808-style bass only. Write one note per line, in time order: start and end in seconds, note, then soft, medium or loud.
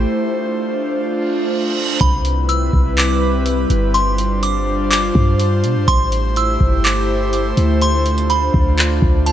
2.01 2.70 C2 loud
2.73 3.66 C2 loud
3.70 5.11 G1 loud
5.15 5.65 G2 loud
5.64 5.77 B2 loud
5.76 5.87 G2 loud
5.88 6.58 A1 loud
6.61 7.53 G1 loud
7.57 8.50 D2 loud
8.54 9.00 D2 loud
9.02 9.32 D2 loud